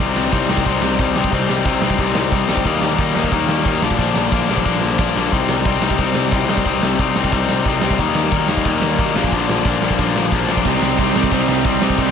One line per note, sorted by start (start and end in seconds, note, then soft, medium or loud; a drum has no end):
0.00 0.14 C2 medium
0.00 0.32 C3 medium
0.00 0.32 G3 medium
0.00 0.33 C4 medium
0.00 0.33 D#4 medium
0.16 0.31 C2 medium
0.16 snare medium
0.32 0.47 C2 medium
0.32 0.50 C3 medium
0.32 0.50 G3 medium
0.32 0.49 C4 medium
0.32 0.48 D#4 medium
0.32 kick medium
0.32 open hi-hat soft
0.49 0.64 C2 medium
0.49 0.65 C3 medium
0.49 0.66 G3 medium
0.49 0.66 C4 medium
0.49 0.67 D#4 loud
0.49 snare loud
0.57 kick medium
0.66 0.80 C2 medium
0.66 0.98 C3 medium
0.66 1.00 G3 medium
0.66 0.99 C4 medium
0.66 1.01 D#4 medium
0.66 kick medium
0.66 open hi-hat medium
0.82 0.97 C2 medium
0.82 snare loud
0.99 1.14 C2 medium
0.99 1.17 C3 medium
0.99 1.17 G3 medium
0.99 1.16 C4 medium
0.99 1.16 D#4 medium
0.99 kick loud
0.99 open hi-hat medium
1.16 1.31 C2 medium
1.16 1.31 C3 medium
1.16 1.33 G3 medium
1.16 1.33 C4 medium
1.16 1.34 D#4 medium
1.16 snare medium
1.24 kick medium
1.32 1.47 C2 medium
1.32 1.65 C3 medium
1.32 1.66 G3 medium
1.32 1.66 C4 medium
1.32 1.67 D#4 medium
1.32 kick medium
1.32 open hi-hat medium
1.49 1.64 C2 medium
1.49 snare medium
1.65 1.80 C2 medium
1.65 1.84 C3 medium
1.65 1.83 G3 medium
1.65 1.82 C4 medium
1.65 1.82 D#4 medium
1.65 kick medium
1.65 open hi-hat medium
1.81 1.97 C2 medium
1.81 1.98 C3 medium
1.81 1.99 G3 medium
1.81 1.99 C4 medium
1.81 2.00 D#4 medium
1.81 snare loud
1.90 kick medium
1.98 2.13 C2 medium
1.98 2.31 C3 medium
1.98 2.32 G3 medium
1.98 2.33 C4 medium
1.98 2.34 D#4 loud
1.98 kick medium
1.98 open hi-hat medium
2.15 2.30 C2 medium
2.15 snare loud
2.32 2.47 C2 medium
2.32 2.49 C3 medium
2.32 2.48 G3 medium
2.32 2.48 C4 medium
2.32 2.47 D#4 medium
2.32 kick loud
2.32 open hi-hat medium
2.48 2.63 C2 medium
2.48 2.65 C3 medium
2.48 2.64 G3 medium
2.48 2.65 C4 medium
2.48 2.65 D#4 medium
2.48 snare loud
2.57 kick medium
2.64 2.80 D#2 medium
2.64 2.97 D#3 medium
2.64 2.98 G3 medium
2.64 3.00 A#3 medium
2.64 2.99 D#4 medium
2.64 kick medium
2.64 open hi-hat soft
2.82 2.97 D#2 medium
2.82 snare medium
2.98 3.13 D#2 medium
2.98 3.16 D#3 medium
2.98 3.15 G3 medium
2.98 3.15 A#3 medium
2.98 3.14 D#4 loud
2.98 kick loud
2.98 open hi-hat soft
3.15 3.30 D#2 medium
3.15 3.31 D#3 medium
3.15 3.32 G3 medium
3.15 3.32 A#3 medium
3.15 3.33 D#4 loud
3.15 snare loud
3.24 kick medium
3.32 3.47 D#2 medium
3.32 3.65 D#3 medium
3.32 3.65 G3 medium
3.32 3.66 A#3 loud
3.32 3.66 D#4 loud
3.32 kick medium
3.32 open hi-hat medium
3.48 3.63 D#2 medium
3.48 snare loud
3.65 3.80 D#2 medium
3.65 3.82 D#3 medium
3.65 3.82 G3 medium
3.65 3.82 A#3 medium
3.65 3.83 D#4 loud
3.65 kick loud
3.65 open hi-hat medium
3.82 3.97 A#1 medium
3.82 4.00 A#2 medium
3.82 3.99 D3 medium
3.82 3.99 F3 medium
3.82 3.98 A#3 medium
3.82 3.97 D4 medium
3.82 snare loud
3.90 kick medium
3.98 4.13 A#1 medium
3.98 4.33 A#2 medium
3.98 4.32 D3 medium
3.98 4.31 F3 medium
3.98 4.31 A#3 medium
3.98 4.30 D4 loud
3.98 kick medium
3.98 open hi-hat soft
4.15 4.30 A#1 medium
4.15 snare loud
4.32 4.47 A#1 medium
4.32 4.47 A#2 medium
4.32 4.48 D3 medium
4.32 4.48 F3 medium
4.32 4.48 A#3 medium
4.32 4.49 D4 medium
4.32 kick loud
4.32 open hi-hat soft
4.48 4.64 A#1 medium
4.48 4.65 A#2 medium
4.48 4.65 D3 medium
4.48 4.64 F3 medium
4.48 4.64 A#3 medium
4.48 4.63 D4 medium
4.48 snare loud
4.57 kick medium
4.65 4.80 A#1 medium
4.65 4.99 A#2 medium
4.65 4.99 D3 medium
4.65 4.98 F3 medium
4.65 4.97 A#3 loud
4.65 4.97 D4 loud
4.65 kick medium
4.65 snare medium
4.83 4.97 A#1 medium
4.98 5.13 A#1 medium
4.98 5.14 A#2 medium
4.98 5.15 D3 medium
4.98 5.16 F3 medium
4.98 5.16 A#3 medium
4.98 5.16 D4 medium
4.98 kick loud
4.98 snare medium
5.15 5.30 A#1 medium
5.15 5.31 A#2 medium
5.15 5.31 D3 medium
5.15 5.32 F3 medium
5.15 5.32 A#3 medium
5.15 5.33 D4 medium
5.15 snare medium
5.32 5.47 C2 medium
5.32 5.66 C3 medium
5.32 5.66 G3 medium
5.32 5.67 C4 medium
5.32 5.67 D#4 medium
5.32 kick loud
5.32 open hi-hat medium
5.48 5.63 C2 medium
5.48 snare loud
5.65 5.80 C2 medium
5.65 5.84 C3 medium
5.65 5.83 G3 medium
5.65 5.83 C4 medium
5.65 5.82 D#4 medium
5.65 kick loud
5.65 open hi-hat medium
5.81 5.96 C2 medium
5.81 5.98 C3 medium
5.81 6.00 G3 medium
5.81 5.99 C4 medium
5.81 6.01 D#4 medium
5.81 snare loud
5.90 kick medium
5.98 6.13 C2 medium
5.98 6.31 C3 medium
5.98 6.32 G3 medium
5.98 6.32 C4 loud
5.98 6.33 D#4 medium
5.98 kick medium
5.98 open hi-hat medium
6.15 6.30 C2 medium
6.15 snare loud
6.32 6.47 C2 medium
6.32 6.50 C3 medium
6.32 6.50 G3 medium
6.32 6.49 C4 medium
6.32 6.49 D#4 medium
6.32 kick loud
6.32 open hi-hat medium
6.48 6.63 C2 medium
6.48 6.65 C3 medium
6.48 6.66 G3 medium
6.48 6.66 C4 medium
6.48 6.67 D#4 medium
6.48 snare loud
6.57 kick medium
6.65 6.80 C2 medium
6.65 6.98 C3 medium
6.65 6.99 G3 medium
6.65 6.99 C4 medium
6.65 7.01 D#4 medium
6.65 kick medium
6.65 open hi-hat medium
6.83 6.97 C2 medium
6.83 snare loud
6.99 7.13 C2 medium
6.99 7.16 C3 medium
6.99 7.16 G3 medium
6.99 7.15 C4 medium
6.99 7.15 D#4 medium
6.99 kick medium
6.99 open hi-hat soft
7.15 7.30 C2 medium
7.15 7.31 C3 medium
7.15 7.31 G3 medium
7.15 7.32 C4 medium
7.15 7.33 D#4 medium
7.15 snare loud
7.24 kick medium
7.32 7.47 C2 medium
7.32 7.65 C3 medium
7.32 7.65 G3 medium
7.32 7.66 C4 medium
7.32 7.66 D#4 loud
7.32 kick medium
7.32 open hi-hat medium
7.49 7.64 C2 medium
7.49 snare medium
7.65 7.80 C2 medium
7.65 7.83 C3 medium
7.65 7.82 G3 medium
7.65 7.82 C4 medium
7.65 7.81 D#4 medium
7.65 kick loud
7.65 open hi-hat medium
7.82 7.97 C2 medium
7.82 7.99 C3 medium
7.82 7.99 G3 medium
7.82 7.98 C4 medium
7.82 7.98 D#4 medium
7.82 snare loud
7.90 kick medium
7.99 8.13 D#2 loud
7.99 8.31 D#3 medium
7.99 8.31 G3 medium
7.99 8.33 A#3 medium
7.99 8.32 D#4 medium
7.99 kick medium
7.99 open hi-hat medium
8.15 8.29 D#2 medium
8.15 snare loud
8.32 8.46 D#2 medium
8.32 8.50 D#3 medium
8.32 8.49 G3 medium
8.32 8.49 A#3 medium
8.32 8.48 D#4 medium
8.32 kick loud
8.32 open hi-hat soft
8.48 8.63 D#2 medium
8.48 8.64 D#3 medium
8.48 8.65 G3 medium
8.48 8.66 A#3 medium
8.48 8.66 D#4 medium
8.48 snare loud
8.57 kick medium
8.65 8.80 D#2 medium
8.65 8.98 D#3 medium
8.65 8.98 G3 medium
8.65 8.99 A#3 loud
8.65 8.99 D#4 medium
8.65 kick medium
8.65 open hi-hat medium
8.81 8.96 D#2 medium
8.81 snare loud
8.99 9.13 D#2 medium
8.99 9.15 D#3 medium
8.99 9.15 G3 medium
8.99 9.15 A#3 medium
8.99 9.15 D#4 medium
8.99 kick loud
8.99 open hi-hat medium
9.15 9.30 A#1 medium
9.15 9.33 A#2 medium
9.15 9.33 D3 loud
9.15 9.32 F3 medium
9.15 9.32 A#3 loud
9.15 9.31 D4 loud
9.15 snare loud
9.24 kick medium
9.32 9.46 A#1 medium
9.32 9.67 A#2 medium
9.32 9.67 D3 medium
9.32 9.66 F3 medium
9.32 9.65 A#3 medium
9.32 9.65 D4 medium
9.32 kick medium
9.32 open hi-hat soft
9.49 9.63 A#1 medium
9.49 snare loud
9.65 9.80 A#1 medium
9.65 9.82 A#2 medium
9.65 9.82 D3 medium
9.65 9.83 F3 medium
9.65 9.84 A#3 medium
9.65 9.84 D4 medium
9.65 kick loud
9.65 open hi-hat medium
9.81 9.96 A#1 medium
9.81 10.00 A#2 medium
9.81 10.00 D3 medium
9.81 9.99 F3 medium
9.81 9.99 A#3 medium
9.81 9.98 D4 medium
9.81 snare medium
9.90 kick medium
9.98 10.13 A#1 medium
9.98 10.34 A#2 medium
9.98 10.34 D3 medium
9.98 10.33 F3 medium
9.98 10.32 A#3 medium
9.98 10.32 D4 medium
9.98 kick medium
9.98 open hi-hat medium
10.15 10.29 A#1 medium
10.15 snare loud
10.32 10.46 A#1 medium
10.32 10.48 A#2 medium
10.32 10.49 D3 medium
10.32 10.50 F3 medium
10.32 10.50 A#3 medium
10.32 10.51 D4 medium
10.32 kick loud
10.32 open hi-hat medium
10.48 10.63 A#1 medium
10.48 10.65 A#2 medium
10.48 10.65 D3 medium
10.48 10.65 F3 medium
10.48 10.66 A#3 medium
10.48 10.66 D4 loud
10.48 snare loud
10.57 kick medium
10.65 10.80 C2 medium
10.65 10.98 C3 medium
10.65 10.99 G3 medium
10.65 11.00 C4 medium
10.65 11.00 D#4 medium
10.65 kick medium
10.65 open hi-hat medium
10.82 10.96 C2 medium
10.82 snare loud
10.98 11.13 C2 medium
10.98 11.17 C3 medium
10.98 11.16 G3 medium
10.98 11.15 C4 medium
10.98 11.15 D#4 medium
10.98 kick loud
10.98 open hi-hat medium
11.15 11.30 C2 medium
11.15 11.31 C3 medium
11.15 11.32 G3 medium
11.15 11.32 C4 medium
11.15 11.34 D#4 medium
11.15 snare loud
11.23 kick medium
11.32 11.46 C2 medium
11.32 11.64 C3 medium
11.32 11.66 G3 medium
11.32 11.65 C4 medium
11.32 11.66 D#4 loud
11.32 kick medium
11.32 open hi-hat soft
11.48 11.63 C2 medium
11.48 snare loud
11.65 11.79 C2 medium
11.65 11.82 C3 medium
11.65 11.83 G3 medium
11.65 11.81 C4 medium
11.65 11.81 D#4 medium
11.65 kick loud
11.65 open hi-hat medium
11.81 11.96 C2 medium
11.81 11.96 C3 medium
11.81 11.98 G3 medium
11.81 11.98 C4 medium
11.81 11.99 D#4 medium
11.81 snare loud
11.90 kick medium
11.98 12.11 C2 medium
11.98 12.11 C3 medium
11.98 12.11 G3 medium
11.98 12.11 C4 medium
11.98 12.11 D#4 medium
11.98 kick medium
11.98 open hi-hat medium